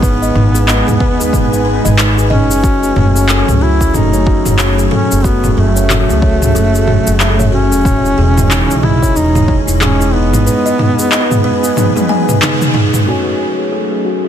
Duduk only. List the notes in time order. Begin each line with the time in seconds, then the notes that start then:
Already playing: B3
2.30 C#4
3.62 E4
3.95 D#4
4.94 C#4
5.25 B3
5.53 B3
5.59 A3
7.54 C#4
8.84 E4
9.17 D#4
9.82 C#4
10.14 B3